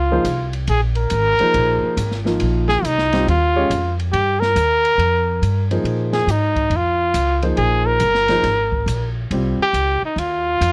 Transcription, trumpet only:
0, 0, Header, 1, 2, 480
1, 0, Start_track
1, 0, Tempo, 431655
1, 751, Time_signature, 4, 2, 24, 8
1, 11925, End_track
2, 0, Start_track
2, 0, Title_t, "Trumpet"
2, 0, Program_c, 0, 56
2, 0, Note_on_c, 0, 65, 80
2, 609, Note_off_c, 0, 65, 0
2, 766, Note_on_c, 0, 68, 92
2, 905, Note_off_c, 0, 68, 0
2, 1081, Note_on_c, 0, 70, 108
2, 2468, Note_off_c, 0, 70, 0
2, 2987, Note_on_c, 0, 68, 102
2, 3169, Note_on_c, 0, 63, 88
2, 3186, Note_off_c, 0, 68, 0
2, 3638, Note_off_c, 0, 63, 0
2, 3664, Note_on_c, 0, 65, 85
2, 4397, Note_off_c, 0, 65, 0
2, 4584, Note_on_c, 0, 67, 91
2, 4889, Note_on_c, 0, 70, 106
2, 4905, Note_off_c, 0, 67, 0
2, 6336, Note_off_c, 0, 70, 0
2, 6823, Note_on_c, 0, 68, 82
2, 7019, Note_on_c, 0, 63, 90
2, 7036, Note_off_c, 0, 68, 0
2, 7520, Note_on_c, 0, 65, 83
2, 7536, Note_off_c, 0, 63, 0
2, 8290, Note_off_c, 0, 65, 0
2, 8422, Note_on_c, 0, 68, 91
2, 8739, Note_on_c, 0, 70, 109
2, 8756, Note_off_c, 0, 68, 0
2, 10183, Note_off_c, 0, 70, 0
2, 10703, Note_on_c, 0, 67, 105
2, 11133, Note_off_c, 0, 67, 0
2, 11176, Note_on_c, 0, 63, 80
2, 11331, Note_on_c, 0, 65, 95
2, 11348, Note_off_c, 0, 63, 0
2, 11925, Note_off_c, 0, 65, 0
2, 11925, End_track
0, 0, End_of_file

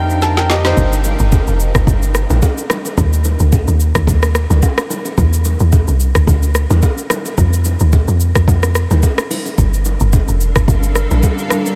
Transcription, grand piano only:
0, 0, Header, 1, 2, 480
1, 0, Start_track
1, 0, Key_signature, -2, "minor"
1, 0, Tempo, 550459
1, 674, Time_signature, 4, 2, 24, 8
1, 10248, End_track
2, 0, Start_track
2, 0, Title_t, "Grand piano"
2, 0, Program_c, 0, 0
2, 0, Control_c, 0, 64, 127
2, 0, Note_on_c, 0, 55, 74
2, 0, Note_on_c, 0, 60, 68
2, 0, Note_on_c, 0, 63, 68
2, 0, Note_on_c, 0, 65, 69
2, 0, Note_on_c, 0, 70, 82
2, 0, Note_on_c, 0, 79, 72
2, 178, Note_off_c, 0, 79, 0
2, 196, Note_on_c, 0, 81, 71
2, 327, Note_on_c, 0, 79, 64
2, 332, Note_off_c, 0, 70, 0
2, 332, Note_on_c, 0, 70, 53
2, 429, Note_off_c, 0, 79, 0
2, 432, Note_off_c, 0, 70, 0
2, 435, Note_on_c, 0, 75, 73
2, 440, Note_on_c, 0, 67, 63
2, 560, Note_off_c, 0, 75, 0
2, 563, Note_off_c, 0, 67, 0
2, 568, Note_on_c, 0, 72, 64
2, 573, Note_off_c, 0, 63, 0
2, 573, Note_on_c, 0, 63, 55
2, 631, Note_off_c, 0, 55, 0
2, 636, Note_off_c, 0, 60, 0
2, 641, Note_off_c, 0, 81, 0
2, 686, Control_c, 0, 64, 0
2, 695, Note_off_c, 0, 65, 0
2, 795, Note_off_c, 0, 72, 0
2, 798, Note_off_c, 0, 63, 0
2, 10248, End_track
0, 0, End_of_file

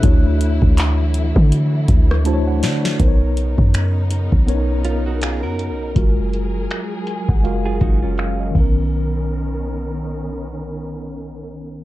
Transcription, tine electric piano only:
0, 0, Header, 1, 2, 480
1, 0, Start_track
1, 0, Tempo, 740741
1, 21, Time_signature, 4, 2, 24, 8
1, 7672, End_track
2, 0, Start_track
2, 0, Title_t, "Tine electric piano"
2, 0, Program_c, 0, 4
2, 0, Control_c, 0, 64, 127
2, 16, Note_on_c, 0, 57, 77
2, 19, Note_on_c, 0, 62, 72
2, 24, Note_on_c, 0, 64, 68
2, 27, Note_on_c, 0, 66, 73
2, 30, Control_c, 0, 64, 0
2, 31, Note_on_c, 0, 73, 88
2, 155, Control_c, 0, 64, 127
2, 910, Note_off_c, 0, 57, 0
2, 912, Note_off_c, 0, 62, 0
2, 914, Note_off_c, 0, 64, 0
2, 916, Note_off_c, 0, 66, 0
2, 918, Note_off_c, 0, 73, 0
2, 1456, Note_on_c, 0, 57, 92
2, 1460, Note_on_c, 0, 62, 89
2, 1464, Note_on_c, 0, 64, 83
2, 1464, Note_on_c, 0, 81, 78
2, 1468, Note_on_c, 0, 66, 88
2, 1473, Note_on_c, 0, 72, 83
2, 1514, Note_on_c, 0, 73, 107
2, 1516, Note_off_c, 0, 72, 0
2, 1592, Note_off_c, 0, 81, 0
2, 1603, Note_on_c, 0, 78, 80
2, 1696, Note_off_c, 0, 78, 0
2, 1705, Note_on_c, 0, 74, 73
2, 1905, Note_off_c, 0, 57, 0
2, 1906, Note_off_c, 0, 62, 0
2, 1909, Note_off_c, 0, 64, 0
2, 1910, Note_off_c, 0, 66, 0
2, 1927, Note_off_c, 0, 74, 0
2, 1934, Note_off_c, 0, 73, 0
2, 1937, Note_on_c, 0, 59, 84
2, 1942, Note_on_c, 0, 63, 77
2, 1948, Note_on_c, 0, 70, 76
2, 1950, Control_c, 0, 64, 0
2, 1953, Note_on_c, 0, 72, 79
2, 1995, Note_on_c, 0, 73, 99
2, 1996, Note_off_c, 0, 72, 0
2, 2058, Control_c, 0, 64, 127
2, 2831, Note_off_c, 0, 59, 0
2, 2834, Note_off_c, 0, 63, 0
2, 2836, Note_off_c, 0, 70, 0
2, 2860, Note_off_c, 0, 73, 0
2, 2895, Note_on_c, 0, 59, 87
2, 2900, Note_on_c, 0, 61, 62
2, 2906, Note_on_c, 0, 70, 81
2, 2911, Note_on_c, 0, 73, 92
2, 2942, Note_on_c, 0, 63, 80
2, 2950, Note_off_c, 0, 61, 0
2, 3790, Note_off_c, 0, 59, 0
2, 3795, Note_off_c, 0, 70, 0
2, 3798, Note_off_c, 0, 73, 0
2, 3813, Note_off_c, 0, 63, 0
2, 3856, Note_on_c, 0, 56, 87
2, 3861, Note_on_c, 0, 65, 76
2, 3866, Note_on_c, 0, 66, 79
2, 3871, Control_c, 0, 64, 0
2, 3872, Note_on_c, 0, 70, 89
2, 3993, Control_c, 0, 64, 127
2, 4583, Note_on_c, 0, 80, 70
2, 4712, Note_off_c, 0, 80, 0
2, 4724, Note_on_c, 0, 78, 70
2, 4750, Note_off_c, 0, 56, 0
2, 4753, Note_off_c, 0, 65, 0
2, 4755, Note_off_c, 0, 66, 0
2, 4758, Note_off_c, 0, 70, 0
2, 4816, Note_off_c, 0, 78, 0
2, 4816, Note_on_c, 0, 56, 83
2, 4821, Note_on_c, 0, 65, 78
2, 4824, Note_on_c, 0, 77, 70
2, 4826, Note_on_c, 0, 66, 76
2, 4832, Note_on_c, 0, 70, 93
2, 5277, Note_off_c, 0, 77, 0
2, 5304, Note_on_c, 0, 77, 70
2, 5432, Note_off_c, 0, 77, 0
2, 5443, Note_on_c, 0, 75, 68
2, 5512, Note_on_c, 0, 51, 73
2, 5533, Note_on_c, 0, 59, 66
2, 5536, Note_off_c, 0, 75, 0
2, 5539, Note_off_c, 0, 56, 0
2, 5541, Note_off_c, 0, 65, 0
2, 5544, Note_off_c, 0, 66, 0
2, 5547, Note_off_c, 0, 70, 0
2, 5550, Control_c, 0, 64, 0
2, 5555, Note_on_c, 0, 61, 68
2, 5576, Note_on_c, 0, 70, 85
2, 5640, Control_c, 0, 64, 127
2, 5789, Control_c, 0, 64, 0
2, 5916, Control_c, 0, 64, 127
2, 7672, Note_off_c, 0, 51, 0
2, 7672, Note_off_c, 0, 59, 0
2, 7672, Note_off_c, 0, 61, 0
2, 7672, Note_off_c, 0, 70, 0
2, 7672, End_track
0, 0, End_of_file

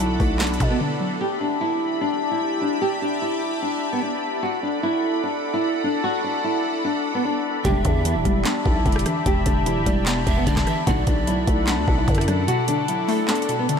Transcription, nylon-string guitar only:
0, 0, Header, 1, 2, 480
1, 0, Start_track
1, 0, Key_signature, 1, "minor"
1, 0, Tempo, 402685
1, 1438, Time_signature, 4, 2, 24, 8
1, 16445, End_track
2, 0, Start_track
2, 0, Title_t, "Nylon-string guitar"
2, 0, Program_c, 0, 24
2, 0, Note_on_c, 0, 64, 80
2, 449, Note_off_c, 0, 64, 0
2, 476, Note_on_c, 0, 62, 79
2, 815, Note_off_c, 0, 62, 0
2, 837, Note_on_c, 0, 59, 85
2, 930, Note_off_c, 0, 59, 0
2, 959, Note_on_c, 0, 62, 84
2, 1410, Note_off_c, 0, 62, 0
2, 1440, Note_on_c, 0, 67, 94
2, 1624, Note_off_c, 0, 67, 0
2, 1677, Note_on_c, 0, 62, 77
2, 1862, Note_off_c, 0, 62, 0
2, 1919, Note_on_c, 0, 64, 88
2, 2370, Note_off_c, 0, 64, 0
2, 2398, Note_on_c, 0, 62, 92
2, 2736, Note_off_c, 0, 62, 0
2, 2758, Note_on_c, 0, 64, 76
2, 3096, Note_off_c, 0, 64, 0
2, 3116, Note_on_c, 0, 62, 81
2, 3302, Note_off_c, 0, 62, 0
2, 3356, Note_on_c, 0, 67, 107
2, 3542, Note_off_c, 0, 67, 0
2, 3596, Note_on_c, 0, 62, 87
2, 3782, Note_off_c, 0, 62, 0
2, 3836, Note_on_c, 0, 64, 91
2, 4288, Note_off_c, 0, 64, 0
2, 4318, Note_on_c, 0, 62, 79
2, 4657, Note_off_c, 0, 62, 0
2, 4680, Note_on_c, 0, 59, 77
2, 4772, Note_off_c, 0, 59, 0
2, 4799, Note_on_c, 0, 62, 79
2, 5250, Note_off_c, 0, 62, 0
2, 5276, Note_on_c, 0, 66, 97
2, 5462, Note_off_c, 0, 66, 0
2, 5517, Note_on_c, 0, 62, 77
2, 5702, Note_off_c, 0, 62, 0
2, 5759, Note_on_c, 0, 64, 93
2, 6210, Note_off_c, 0, 64, 0
2, 6238, Note_on_c, 0, 62, 85
2, 6576, Note_off_c, 0, 62, 0
2, 6599, Note_on_c, 0, 64, 83
2, 6937, Note_off_c, 0, 64, 0
2, 6960, Note_on_c, 0, 62, 85
2, 7144, Note_off_c, 0, 62, 0
2, 7197, Note_on_c, 0, 66, 115
2, 7382, Note_off_c, 0, 66, 0
2, 7438, Note_on_c, 0, 62, 84
2, 7623, Note_off_c, 0, 62, 0
2, 7679, Note_on_c, 0, 64, 81
2, 8130, Note_off_c, 0, 64, 0
2, 8159, Note_on_c, 0, 62, 82
2, 8497, Note_off_c, 0, 62, 0
2, 8519, Note_on_c, 0, 59, 87
2, 8611, Note_off_c, 0, 59, 0
2, 8639, Note_on_c, 0, 62, 83
2, 9090, Note_off_c, 0, 62, 0
2, 9119, Note_on_c, 0, 67, 94
2, 9304, Note_off_c, 0, 67, 0
2, 9359, Note_on_c, 0, 62, 82
2, 9544, Note_off_c, 0, 62, 0
2, 9600, Note_on_c, 0, 64, 85
2, 10050, Note_off_c, 0, 64, 0
2, 10078, Note_on_c, 0, 62, 94
2, 10417, Note_off_c, 0, 62, 0
2, 10438, Note_on_c, 0, 64, 78
2, 10776, Note_off_c, 0, 64, 0
2, 10797, Note_on_c, 0, 62, 77
2, 10982, Note_off_c, 0, 62, 0
2, 11037, Note_on_c, 0, 67, 107
2, 11222, Note_off_c, 0, 67, 0
2, 11279, Note_on_c, 0, 62, 91
2, 11464, Note_off_c, 0, 62, 0
2, 11515, Note_on_c, 0, 64, 88
2, 11968, Note_off_c, 0, 64, 0
2, 11998, Note_on_c, 0, 62, 83
2, 12336, Note_off_c, 0, 62, 0
2, 12359, Note_on_c, 0, 59, 78
2, 12451, Note_off_c, 0, 59, 0
2, 12479, Note_on_c, 0, 62, 78
2, 12930, Note_off_c, 0, 62, 0
2, 12957, Note_on_c, 0, 66, 96
2, 13143, Note_off_c, 0, 66, 0
2, 13199, Note_on_c, 0, 62, 80
2, 13384, Note_off_c, 0, 62, 0
2, 13441, Note_on_c, 0, 64, 91
2, 13891, Note_off_c, 0, 64, 0
2, 13919, Note_on_c, 0, 62, 87
2, 14257, Note_off_c, 0, 62, 0
2, 14279, Note_on_c, 0, 64, 83
2, 14617, Note_off_c, 0, 64, 0
2, 14640, Note_on_c, 0, 62, 88
2, 14824, Note_off_c, 0, 62, 0
2, 14878, Note_on_c, 0, 66, 117
2, 15063, Note_off_c, 0, 66, 0
2, 15118, Note_on_c, 0, 62, 83
2, 15303, Note_off_c, 0, 62, 0
2, 15360, Note_on_c, 0, 64, 83
2, 15810, Note_off_c, 0, 64, 0
2, 15839, Note_on_c, 0, 62, 80
2, 16177, Note_off_c, 0, 62, 0
2, 16199, Note_on_c, 0, 59, 84
2, 16291, Note_off_c, 0, 59, 0
2, 16320, Note_on_c, 0, 62, 81
2, 16445, Note_off_c, 0, 62, 0
2, 16445, End_track
0, 0, End_of_file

